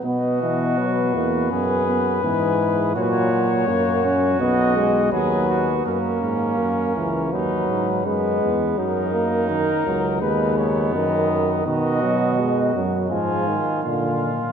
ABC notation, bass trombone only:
X:1
M:4/4
L:1/8
Q:1/4=83
K:B
V:1 name="Bass trombone" clef=bass
B,,3 E,, F,,2 G,,2 | A,,2 F,,2 B,,,2 D,,2 | F,, G,, F,, C,, D,, G,, F,, E,, | F,,3 C,, D,,2 F,,2 |
[K:Cblyd] =B,,3 ^F,, A,, z _B,,2 |]